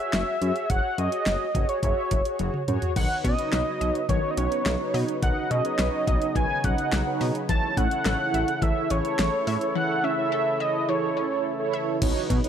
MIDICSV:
0, 0, Header, 1, 7, 480
1, 0, Start_track
1, 0, Tempo, 566038
1, 591, Time_signature, 4, 2, 24, 8
1, 10590, End_track
2, 0, Start_track
2, 0, Title_t, "Analog synth lead"
2, 0, Program_c, 0, 81
2, 0, Note_on_c, 0, 76, 104
2, 592, Note_on_c, 0, 78, 109
2, 605, Note_off_c, 0, 76, 0
2, 832, Note_on_c, 0, 75, 100
2, 844, Note_off_c, 0, 78, 0
2, 1432, Note_on_c, 0, 73, 86
2, 1444, Note_off_c, 0, 75, 0
2, 1548, Note_off_c, 0, 73, 0
2, 1553, Note_on_c, 0, 73, 82
2, 1999, Note_off_c, 0, 73, 0
2, 2512, Note_on_c, 0, 78, 113
2, 2735, Note_off_c, 0, 78, 0
2, 2751, Note_on_c, 0, 75, 107
2, 3437, Note_off_c, 0, 75, 0
2, 3469, Note_on_c, 0, 73, 91
2, 3638, Note_off_c, 0, 73, 0
2, 3653, Note_on_c, 0, 75, 60
2, 3711, Note_on_c, 0, 73, 85
2, 3723, Note_off_c, 0, 75, 0
2, 4191, Note_off_c, 0, 73, 0
2, 4432, Note_on_c, 0, 78, 101
2, 4671, Note_on_c, 0, 75, 93
2, 4683, Note_off_c, 0, 78, 0
2, 5387, Note_off_c, 0, 75, 0
2, 5392, Note_on_c, 0, 80, 117
2, 5633, Note_on_c, 0, 78, 100
2, 5646, Note_off_c, 0, 80, 0
2, 6112, Note_off_c, 0, 78, 0
2, 6353, Note_on_c, 0, 81, 114
2, 6591, Note_on_c, 0, 78, 110
2, 6604, Note_off_c, 0, 81, 0
2, 7313, Note_on_c, 0, 76, 105
2, 7326, Note_off_c, 0, 78, 0
2, 7553, Note_on_c, 0, 73, 98
2, 7566, Note_off_c, 0, 76, 0
2, 8269, Note_off_c, 0, 73, 0
2, 8274, Note_on_c, 0, 78, 102
2, 8513, Note_on_c, 0, 76, 93
2, 8526, Note_off_c, 0, 78, 0
2, 8629, Note_off_c, 0, 76, 0
2, 8635, Note_on_c, 0, 76, 100
2, 8992, Note_on_c, 0, 75, 89
2, 9005, Note_off_c, 0, 76, 0
2, 9234, Note_on_c, 0, 73, 85
2, 9246, Note_off_c, 0, 75, 0
2, 9712, Note_off_c, 0, 73, 0
2, 10590, End_track
3, 0, Start_track
3, 0, Title_t, "Analog polysynth"
3, 0, Program_c, 1, 90
3, 0, Note_on_c, 1, 66, 77
3, 0, Note_on_c, 1, 68, 70
3, 0, Note_on_c, 1, 73, 86
3, 304, Note_off_c, 1, 66, 0
3, 305, Note_off_c, 1, 68, 0
3, 305, Note_off_c, 1, 73, 0
3, 353, Note_on_c, 1, 66, 76
3, 353, Note_on_c, 1, 68, 67
3, 353, Note_on_c, 1, 73, 81
3, 560, Note_off_c, 1, 66, 0
3, 560, Note_off_c, 1, 68, 0
3, 561, Note_off_c, 1, 73, 0
3, 591, Note_on_c, 1, 66, 75
3, 591, Note_on_c, 1, 68, 67
3, 591, Note_on_c, 1, 73, 81
3, 799, Note_off_c, 1, 66, 0
3, 799, Note_off_c, 1, 68, 0
3, 800, Note_off_c, 1, 73, 0
3, 830, Note_on_c, 1, 66, 79
3, 831, Note_on_c, 1, 68, 71
3, 831, Note_on_c, 1, 73, 84
3, 1248, Note_off_c, 1, 66, 0
3, 1248, Note_off_c, 1, 68, 0
3, 1248, Note_off_c, 1, 73, 0
3, 1311, Note_on_c, 1, 73, 80
3, 1312, Note_on_c, 1, 66, 72
3, 1312, Note_on_c, 1, 68, 67
3, 1520, Note_off_c, 1, 66, 0
3, 1520, Note_off_c, 1, 68, 0
3, 1520, Note_off_c, 1, 73, 0
3, 1552, Note_on_c, 1, 66, 73
3, 1552, Note_on_c, 1, 68, 68
3, 1552, Note_on_c, 1, 76, 81
3, 1864, Note_off_c, 1, 66, 0
3, 1864, Note_off_c, 1, 68, 0
3, 1864, Note_off_c, 1, 76, 0
3, 1913, Note_on_c, 1, 66, 76
3, 1913, Note_on_c, 1, 68, 72
3, 1913, Note_on_c, 1, 73, 85
3, 2225, Note_off_c, 1, 66, 0
3, 2225, Note_off_c, 1, 68, 0
3, 2225, Note_off_c, 1, 73, 0
3, 2271, Note_on_c, 1, 66, 87
3, 2271, Note_on_c, 1, 68, 83
3, 2272, Note_on_c, 1, 73, 96
3, 2479, Note_off_c, 1, 66, 0
3, 2479, Note_off_c, 1, 68, 0
3, 2480, Note_off_c, 1, 73, 0
3, 2511, Note_on_c, 1, 63, 73
3, 2511, Note_on_c, 1, 71, 66
3, 2511, Note_on_c, 1, 73, 84
3, 2824, Note_off_c, 1, 63, 0
3, 2824, Note_off_c, 1, 71, 0
3, 2824, Note_off_c, 1, 73, 0
3, 2872, Note_on_c, 1, 63, 78
3, 2872, Note_on_c, 1, 71, 70
3, 2872, Note_on_c, 1, 73, 85
3, 3393, Note_off_c, 1, 63, 0
3, 3393, Note_off_c, 1, 71, 0
3, 3393, Note_off_c, 1, 73, 0
3, 3471, Note_on_c, 1, 63, 77
3, 3471, Note_on_c, 1, 71, 65
3, 3471, Note_on_c, 1, 73, 81
3, 3679, Note_off_c, 1, 63, 0
3, 3679, Note_off_c, 1, 71, 0
3, 3679, Note_off_c, 1, 73, 0
3, 3710, Note_on_c, 1, 71, 69
3, 3710, Note_on_c, 1, 73, 83
3, 3711, Note_on_c, 1, 63, 74
3, 4023, Note_off_c, 1, 71, 0
3, 4023, Note_off_c, 1, 73, 0
3, 4024, Note_off_c, 1, 63, 0
3, 4069, Note_on_c, 1, 63, 75
3, 4069, Note_on_c, 1, 71, 72
3, 4070, Note_on_c, 1, 73, 84
3, 4383, Note_off_c, 1, 63, 0
3, 4383, Note_off_c, 1, 71, 0
3, 4383, Note_off_c, 1, 73, 0
3, 4431, Note_on_c, 1, 63, 74
3, 4431, Note_on_c, 1, 71, 69
3, 4431, Note_on_c, 1, 75, 83
3, 4744, Note_off_c, 1, 63, 0
3, 4744, Note_off_c, 1, 71, 0
3, 4744, Note_off_c, 1, 75, 0
3, 4790, Note_on_c, 1, 71, 73
3, 4790, Note_on_c, 1, 73, 90
3, 4791, Note_on_c, 1, 63, 78
3, 5312, Note_off_c, 1, 63, 0
3, 5312, Note_off_c, 1, 71, 0
3, 5312, Note_off_c, 1, 73, 0
3, 5393, Note_on_c, 1, 63, 73
3, 5393, Note_on_c, 1, 71, 71
3, 5393, Note_on_c, 1, 73, 82
3, 5600, Note_off_c, 1, 63, 0
3, 5600, Note_off_c, 1, 71, 0
3, 5600, Note_off_c, 1, 73, 0
3, 5633, Note_on_c, 1, 63, 72
3, 5633, Note_on_c, 1, 71, 66
3, 5633, Note_on_c, 1, 75, 81
3, 5945, Note_off_c, 1, 63, 0
3, 5945, Note_off_c, 1, 71, 0
3, 5945, Note_off_c, 1, 75, 0
3, 5991, Note_on_c, 1, 63, 77
3, 5991, Note_on_c, 1, 71, 70
3, 5992, Note_on_c, 1, 73, 84
3, 6304, Note_off_c, 1, 63, 0
3, 6304, Note_off_c, 1, 71, 0
3, 6304, Note_off_c, 1, 73, 0
3, 6352, Note_on_c, 1, 64, 77
3, 6352, Note_on_c, 1, 69, 68
3, 6352, Note_on_c, 1, 73, 84
3, 6664, Note_off_c, 1, 64, 0
3, 6664, Note_off_c, 1, 69, 0
3, 6664, Note_off_c, 1, 73, 0
3, 6713, Note_on_c, 1, 64, 81
3, 6713, Note_on_c, 1, 69, 71
3, 6713, Note_on_c, 1, 73, 86
3, 7233, Note_off_c, 1, 64, 0
3, 7233, Note_off_c, 1, 69, 0
3, 7233, Note_off_c, 1, 73, 0
3, 7310, Note_on_c, 1, 73, 84
3, 7311, Note_on_c, 1, 64, 74
3, 7311, Note_on_c, 1, 69, 69
3, 7519, Note_off_c, 1, 69, 0
3, 7519, Note_off_c, 1, 73, 0
3, 7520, Note_off_c, 1, 64, 0
3, 7551, Note_on_c, 1, 69, 67
3, 7552, Note_on_c, 1, 64, 73
3, 7552, Note_on_c, 1, 73, 81
3, 7864, Note_off_c, 1, 64, 0
3, 7864, Note_off_c, 1, 69, 0
3, 7864, Note_off_c, 1, 73, 0
3, 7912, Note_on_c, 1, 64, 76
3, 7912, Note_on_c, 1, 69, 72
3, 7912, Note_on_c, 1, 73, 85
3, 8224, Note_off_c, 1, 64, 0
3, 8224, Note_off_c, 1, 69, 0
3, 8224, Note_off_c, 1, 73, 0
3, 8273, Note_on_c, 1, 64, 75
3, 8273, Note_on_c, 1, 69, 69
3, 8273, Note_on_c, 1, 73, 84
3, 8585, Note_off_c, 1, 64, 0
3, 8585, Note_off_c, 1, 69, 0
3, 8585, Note_off_c, 1, 73, 0
3, 8632, Note_on_c, 1, 64, 80
3, 8633, Note_on_c, 1, 69, 73
3, 8633, Note_on_c, 1, 73, 87
3, 9153, Note_off_c, 1, 64, 0
3, 9153, Note_off_c, 1, 69, 0
3, 9153, Note_off_c, 1, 73, 0
3, 9231, Note_on_c, 1, 69, 69
3, 9231, Note_on_c, 1, 73, 82
3, 9232, Note_on_c, 1, 64, 74
3, 9440, Note_off_c, 1, 64, 0
3, 9440, Note_off_c, 1, 69, 0
3, 9440, Note_off_c, 1, 73, 0
3, 9470, Note_on_c, 1, 69, 71
3, 9470, Note_on_c, 1, 73, 81
3, 9471, Note_on_c, 1, 64, 73
3, 9783, Note_off_c, 1, 69, 0
3, 9783, Note_off_c, 1, 73, 0
3, 9784, Note_off_c, 1, 64, 0
3, 9832, Note_on_c, 1, 64, 94
3, 9832, Note_on_c, 1, 69, 82
3, 9832, Note_on_c, 1, 73, 100
3, 10144, Note_off_c, 1, 64, 0
3, 10144, Note_off_c, 1, 69, 0
3, 10144, Note_off_c, 1, 73, 0
3, 10191, Note_on_c, 1, 63, 94
3, 10192, Note_on_c, 1, 66, 86
3, 10192, Note_on_c, 1, 71, 81
3, 10192, Note_on_c, 1, 73, 100
3, 10504, Note_off_c, 1, 63, 0
3, 10504, Note_off_c, 1, 66, 0
3, 10504, Note_off_c, 1, 71, 0
3, 10504, Note_off_c, 1, 73, 0
3, 10550, Note_on_c, 1, 63, 93
3, 10550, Note_on_c, 1, 66, 86
3, 10550, Note_on_c, 1, 71, 85
3, 10551, Note_on_c, 1, 73, 105
3, 10590, Note_off_c, 1, 63, 0
3, 10590, Note_off_c, 1, 66, 0
3, 10590, Note_off_c, 1, 71, 0
3, 10590, Note_off_c, 1, 73, 0
3, 10590, End_track
4, 0, Start_track
4, 0, Title_t, "Synth arpeggio sound"
4, 0, Program_c, 2, 84
4, 2511, Note_on_c, 2, 51, 89
4, 2705, Note_off_c, 2, 51, 0
4, 2751, Note_on_c, 2, 61, 78
4, 2945, Note_off_c, 2, 61, 0
4, 2991, Note_on_c, 2, 71, 87
4, 3185, Note_off_c, 2, 71, 0
4, 3230, Note_on_c, 2, 75, 83
4, 3425, Note_off_c, 2, 75, 0
4, 3470, Note_on_c, 2, 51, 91
4, 3665, Note_off_c, 2, 51, 0
4, 3710, Note_on_c, 2, 61, 81
4, 3904, Note_off_c, 2, 61, 0
4, 4189, Note_on_c, 2, 75, 87
4, 4384, Note_off_c, 2, 75, 0
4, 4430, Note_on_c, 2, 51, 92
4, 4625, Note_off_c, 2, 51, 0
4, 4671, Note_on_c, 2, 61, 80
4, 4865, Note_off_c, 2, 61, 0
4, 4910, Note_on_c, 2, 71, 88
4, 5105, Note_off_c, 2, 71, 0
4, 5150, Note_on_c, 2, 75, 87
4, 5345, Note_off_c, 2, 75, 0
4, 5391, Note_on_c, 2, 51, 91
4, 5585, Note_off_c, 2, 51, 0
4, 5631, Note_on_c, 2, 61, 82
4, 5825, Note_off_c, 2, 61, 0
4, 6112, Note_on_c, 2, 75, 90
4, 6305, Note_off_c, 2, 75, 0
4, 6351, Note_on_c, 2, 52, 94
4, 6545, Note_off_c, 2, 52, 0
4, 6591, Note_on_c, 2, 61, 79
4, 6785, Note_off_c, 2, 61, 0
4, 6832, Note_on_c, 2, 69, 92
4, 7026, Note_off_c, 2, 69, 0
4, 7072, Note_on_c, 2, 76, 83
4, 7266, Note_off_c, 2, 76, 0
4, 7312, Note_on_c, 2, 52, 90
4, 7506, Note_off_c, 2, 52, 0
4, 7551, Note_on_c, 2, 61, 84
4, 7745, Note_off_c, 2, 61, 0
4, 8031, Note_on_c, 2, 76, 89
4, 8225, Note_off_c, 2, 76, 0
4, 8271, Note_on_c, 2, 52, 92
4, 8465, Note_off_c, 2, 52, 0
4, 8512, Note_on_c, 2, 61, 83
4, 8706, Note_off_c, 2, 61, 0
4, 8751, Note_on_c, 2, 69, 88
4, 8945, Note_off_c, 2, 69, 0
4, 8991, Note_on_c, 2, 76, 86
4, 9185, Note_off_c, 2, 76, 0
4, 9231, Note_on_c, 2, 52, 92
4, 9425, Note_off_c, 2, 52, 0
4, 9470, Note_on_c, 2, 61, 81
4, 9664, Note_off_c, 2, 61, 0
4, 9951, Note_on_c, 2, 76, 89
4, 10145, Note_off_c, 2, 76, 0
4, 10590, End_track
5, 0, Start_track
5, 0, Title_t, "Analog synth pad"
5, 0, Program_c, 3, 89
5, 2511, Note_on_c, 3, 49, 79
5, 2511, Note_on_c, 3, 54, 71
5, 2511, Note_on_c, 3, 59, 72
5, 2511, Note_on_c, 3, 63, 71
5, 2511, Note_on_c, 3, 66, 89
5, 4412, Note_off_c, 3, 66, 0
5, 4429, Note_on_c, 3, 68, 86
5, 6317, Note_off_c, 3, 54, 0
5, 6317, Note_off_c, 3, 59, 0
5, 6317, Note_off_c, 3, 63, 0
5, 6331, Note_off_c, 3, 68, 0
5, 6351, Note_on_c, 3, 52, 71
5, 6351, Note_on_c, 3, 69, 90
5, 6352, Note_on_c, 3, 57, 73
5, 6352, Note_on_c, 3, 64, 72
5, 10157, Note_off_c, 3, 49, 0
5, 10157, Note_off_c, 3, 52, 0
5, 10157, Note_off_c, 3, 57, 0
5, 10157, Note_off_c, 3, 64, 0
5, 10157, Note_off_c, 3, 69, 0
5, 10190, Note_on_c, 3, 54, 76
5, 10190, Note_on_c, 3, 59, 73
5, 10191, Note_on_c, 3, 63, 77
5, 10192, Note_on_c, 3, 49, 84
5, 10192, Note_on_c, 3, 66, 92
5, 10590, Note_off_c, 3, 49, 0
5, 10590, Note_off_c, 3, 54, 0
5, 10590, Note_off_c, 3, 59, 0
5, 10590, Note_off_c, 3, 63, 0
5, 10590, Note_off_c, 3, 66, 0
5, 10590, End_track
6, 0, Start_track
6, 0, Title_t, "Analog synth bass"
6, 0, Program_c, 4, 38
6, 112, Note_on_c, 4, 30, 103
6, 199, Note_off_c, 4, 30, 0
6, 352, Note_on_c, 4, 42, 100
6, 439, Note_off_c, 4, 42, 0
6, 593, Note_on_c, 4, 30, 99
6, 679, Note_off_c, 4, 30, 0
6, 832, Note_on_c, 4, 42, 94
6, 919, Note_off_c, 4, 42, 0
6, 1072, Note_on_c, 4, 30, 99
6, 1159, Note_off_c, 4, 30, 0
6, 1312, Note_on_c, 4, 30, 106
6, 1399, Note_off_c, 4, 30, 0
6, 1550, Note_on_c, 4, 30, 115
6, 1637, Note_off_c, 4, 30, 0
6, 1792, Note_on_c, 4, 30, 97
6, 1879, Note_off_c, 4, 30, 0
6, 2032, Note_on_c, 4, 30, 103
6, 2118, Note_off_c, 4, 30, 0
6, 2271, Note_on_c, 4, 42, 98
6, 2358, Note_off_c, 4, 42, 0
6, 2511, Note_on_c, 4, 35, 102
6, 2598, Note_off_c, 4, 35, 0
6, 2751, Note_on_c, 4, 47, 97
6, 2838, Note_off_c, 4, 47, 0
6, 2991, Note_on_c, 4, 35, 96
6, 3078, Note_off_c, 4, 35, 0
6, 3230, Note_on_c, 4, 35, 102
6, 3317, Note_off_c, 4, 35, 0
6, 3468, Note_on_c, 4, 35, 105
6, 3556, Note_off_c, 4, 35, 0
6, 3709, Note_on_c, 4, 35, 96
6, 3797, Note_off_c, 4, 35, 0
6, 3951, Note_on_c, 4, 35, 103
6, 4038, Note_off_c, 4, 35, 0
6, 4189, Note_on_c, 4, 47, 99
6, 4277, Note_off_c, 4, 47, 0
6, 4432, Note_on_c, 4, 35, 104
6, 4518, Note_off_c, 4, 35, 0
6, 4671, Note_on_c, 4, 47, 105
6, 4758, Note_off_c, 4, 47, 0
6, 4910, Note_on_c, 4, 35, 98
6, 4998, Note_off_c, 4, 35, 0
6, 5151, Note_on_c, 4, 35, 97
6, 5238, Note_off_c, 4, 35, 0
6, 5389, Note_on_c, 4, 35, 106
6, 5477, Note_off_c, 4, 35, 0
6, 5632, Note_on_c, 4, 35, 95
6, 5719, Note_off_c, 4, 35, 0
6, 5871, Note_on_c, 4, 35, 99
6, 5958, Note_off_c, 4, 35, 0
6, 6112, Note_on_c, 4, 47, 104
6, 6199, Note_off_c, 4, 47, 0
6, 6352, Note_on_c, 4, 33, 104
6, 6439, Note_off_c, 4, 33, 0
6, 6591, Note_on_c, 4, 45, 97
6, 6678, Note_off_c, 4, 45, 0
6, 6830, Note_on_c, 4, 33, 100
6, 6917, Note_off_c, 4, 33, 0
6, 7071, Note_on_c, 4, 33, 99
6, 7158, Note_off_c, 4, 33, 0
6, 7309, Note_on_c, 4, 33, 115
6, 7397, Note_off_c, 4, 33, 0
6, 7552, Note_on_c, 4, 33, 106
6, 7639, Note_off_c, 4, 33, 0
6, 7792, Note_on_c, 4, 33, 98
6, 7879, Note_off_c, 4, 33, 0
6, 8032, Note_on_c, 4, 45, 114
6, 8118, Note_off_c, 4, 45, 0
6, 10191, Note_on_c, 4, 35, 101
6, 10278, Note_off_c, 4, 35, 0
6, 10431, Note_on_c, 4, 47, 102
6, 10518, Note_off_c, 4, 47, 0
6, 10590, End_track
7, 0, Start_track
7, 0, Title_t, "Drums"
7, 111, Note_on_c, 9, 42, 67
7, 113, Note_on_c, 9, 38, 109
7, 195, Note_off_c, 9, 42, 0
7, 198, Note_off_c, 9, 38, 0
7, 353, Note_on_c, 9, 42, 68
7, 438, Note_off_c, 9, 42, 0
7, 472, Note_on_c, 9, 42, 47
7, 557, Note_off_c, 9, 42, 0
7, 592, Note_on_c, 9, 42, 95
7, 593, Note_on_c, 9, 36, 110
7, 677, Note_off_c, 9, 36, 0
7, 677, Note_off_c, 9, 42, 0
7, 833, Note_on_c, 9, 42, 82
7, 918, Note_off_c, 9, 42, 0
7, 951, Note_on_c, 9, 42, 59
7, 1036, Note_off_c, 9, 42, 0
7, 1071, Note_on_c, 9, 38, 99
7, 1073, Note_on_c, 9, 42, 77
7, 1156, Note_off_c, 9, 38, 0
7, 1158, Note_off_c, 9, 42, 0
7, 1312, Note_on_c, 9, 36, 89
7, 1314, Note_on_c, 9, 42, 73
7, 1397, Note_off_c, 9, 36, 0
7, 1399, Note_off_c, 9, 42, 0
7, 1432, Note_on_c, 9, 42, 53
7, 1517, Note_off_c, 9, 42, 0
7, 1549, Note_on_c, 9, 36, 84
7, 1551, Note_on_c, 9, 42, 77
7, 1634, Note_off_c, 9, 36, 0
7, 1636, Note_off_c, 9, 42, 0
7, 1790, Note_on_c, 9, 42, 85
7, 1792, Note_on_c, 9, 36, 88
7, 1875, Note_off_c, 9, 42, 0
7, 1877, Note_off_c, 9, 36, 0
7, 1911, Note_on_c, 9, 42, 50
7, 1996, Note_off_c, 9, 42, 0
7, 2028, Note_on_c, 9, 42, 68
7, 2030, Note_on_c, 9, 48, 59
7, 2113, Note_off_c, 9, 42, 0
7, 2115, Note_off_c, 9, 48, 0
7, 2151, Note_on_c, 9, 47, 61
7, 2236, Note_off_c, 9, 47, 0
7, 2271, Note_on_c, 9, 45, 88
7, 2272, Note_on_c, 9, 42, 67
7, 2356, Note_off_c, 9, 45, 0
7, 2357, Note_off_c, 9, 42, 0
7, 2392, Note_on_c, 9, 42, 47
7, 2392, Note_on_c, 9, 43, 86
7, 2476, Note_off_c, 9, 43, 0
7, 2477, Note_off_c, 9, 42, 0
7, 2511, Note_on_c, 9, 36, 113
7, 2511, Note_on_c, 9, 42, 92
7, 2511, Note_on_c, 9, 49, 95
7, 2596, Note_off_c, 9, 36, 0
7, 2596, Note_off_c, 9, 42, 0
7, 2596, Note_off_c, 9, 49, 0
7, 2750, Note_on_c, 9, 36, 94
7, 2752, Note_on_c, 9, 42, 82
7, 2835, Note_off_c, 9, 36, 0
7, 2837, Note_off_c, 9, 42, 0
7, 2870, Note_on_c, 9, 42, 61
7, 2955, Note_off_c, 9, 42, 0
7, 2990, Note_on_c, 9, 38, 99
7, 2992, Note_on_c, 9, 42, 76
7, 3075, Note_off_c, 9, 38, 0
7, 3077, Note_off_c, 9, 42, 0
7, 3233, Note_on_c, 9, 42, 73
7, 3318, Note_off_c, 9, 42, 0
7, 3352, Note_on_c, 9, 42, 52
7, 3437, Note_off_c, 9, 42, 0
7, 3468, Note_on_c, 9, 36, 86
7, 3471, Note_on_c, 9, 42, 74
7, 3553, Note_off_c, 9, 36, 0
7, 3556, Note_off_c, 9, 42, 0
7, 3709, Note_on_c, 9, 42, 85
7, 3794, Note_off_c, 9, 42, 0
7, 3832, Note_on_c, 9, 42, 50
7, 3916, Note_off_c, 9, 42, 0
7, 3949, Note_on_c, 9, 42, 70
7, 3952, Note_on_c, 9, 38, 119
7, 4034, Note_off_c, 9, 42, 0
7, 4036, Note_off_c, 9, 38, 0
7, 4193, Note_on_c, 9, 46, 67
7, 4277, Note_off_c, 9, 46, 0
7, 4312, Note_on_c, 9, 42, 49
7, 4397, Note_off_c, 9, 42, 0
7, 4431, Note_on_c, 9, 36, 112
7, 4431, Note_on_c, 9, 42, 94
7, 4516, Note_off_c, 9, 36, 0
7, 4516, Note_off_c, 9, 42, 0
7, 4672, Note_on_c, 9, 42, 82
7, 4756, Note_off_c, 9, 42, 0
7, 4790, Note_on_c, 9, 42, 59
7, 4875, Note_off_c, 9, 42, 0
7, 4908, Note_on_c, 9, 38, 99
7, 4910, Note_on_c, 9, 42, 76
7, 4993, Note_off_c, 9, 38, 0
7, 4995, Note_off_c, 9, 42, 0
7, 5151, Note_on_c, 9, 36, 94
7, 5152, Note_on_c, 9, 42, 72
7, 5236, Note_off_c, 9, 36, 0
7, 5237, Note_off_c, 9, 42, 0
7, 5271, Note_on_c, 9, 42, 54
7, 5356, Note_off_c, 9, 42, 0
7, 5389, Note_on_c, 9, 36, 86
7, 5391, Note_on_c, 9, 42, 77
7, 5474, Note_off_c, 9, 36, 0
7, 5476, Note_off_c, 9, 42, 0
7, 5630, Note_on_c, 9, 42, 85
7, 5632, Note_on_c, 9, 36, 87
7, 5715, Note_off_c, 9, 42, 0
7, 5717, Note_off_c, 9, 36, 0
7, 5752, Note_on_c, 9, 42, 50
7, 5837, Note_off_c, 9, 42, 0
7, 5870, Note_on_c, 9, 42, 72
7, 5872, Note_on_c, 9, 38, 118
7, 5955, Note_off_c, 9, 42, 0
7, 5957, Note_off_c, 9, 38, 0
7, 6113, Note_on_c, 9, 46, 68
7, 6198, Note_off_c, 9, 46, 0
7, 6233, Note_on_c, 9, 42, 49
7, 6318, Note_off_c, 9, 42, 0
7, 6352, Note_on_c, 9, 36, 112
7, 6352, Note_on_c, 9, 42, 93
7, 6437, Note_off_c, 9, 36, 0
7, 6437, Note_off_c, 9, 42, 0
7, 6591, Note_on_c, 9, 36, 96
7, 6593, Note_on_c, 9, 42, 85
7, 6675, Note_off_c, 9, 36, 0
7, 6678, Note_off_c, 9, 42, 0
7, 6711, Note_on_c, 9, 42, 63
7, 6796, Note_off_c, 9, 42, 0
7, 6830, Note_on_c, 9, 38, 102
7, 6833, Note_on_c, 9, 42, 82
7, 6915, Note_off_c, 9, 38, 0
7, 6917, Note_off_c, 9, 42, 0
7, 7074, Note_on_c, 9, 42, 73
7, 7159, Note_off_c, 9, 42, 0
7, 7191, Note_on_c, 9, 42, 52
7, 7276, Note_off_c, 9, 42, 0
7, 7309, Note_on_c, 9, 36, 86
7, 7311, Note_on_c, 9, 42, 77
7, 7394, Note_off_c, 9, 36, 0
7, 7396, Note_off_c, 9, 42, 0
7, 7550, Note_on_c, 9, 42, 84
7, 7635, Note_off_c, 9, 42, 0
7, 7672, Note_on_c, 9, 42, 50
7, 7757, Note_off_c, 9, 42, 0
7, 7790, Note_on_c, 9, 42, 71
7, 7793, Note_on_c, 9, 38, 116
7, 7875, Note_off_c, 9, 42, 0
7, 7878, Note_off_c, 9, 38, 0
7, 8032, Note_on_c, 9, 46, 68
7, 8117, Note_off_c, 9, 46, 0
7, 8151, Note_on_c, 9, 42, 50
7, 8236, Note_off_c, 9, 42, 0
7, 10191, Note_on_c, 9, 42, 99
7, 10192, Note_on_c, 9, 36, 115
7, 10192, Note_on_c, 9, 49, 102
7, 10276, Note_off_c, 9, 36, 0
7, 10276, Note_off_c, 9, 42, 0
7, 10276, Note_off_c, 9, 49, 0
7, 10431, Note_on_c, 9, 36, 95
7, 10433, Note_on_c, 9, 42, 83
7, 10515, Note_off_c, 9, 36, 0
7, 10517, Note_off_c, 9, 42, 0
7, 10551, Note_on_c, 9, 42, 64
7, 10590, Note_off_c, 9, 42, 0
7, 10590, End_track
0, 0, End_of_file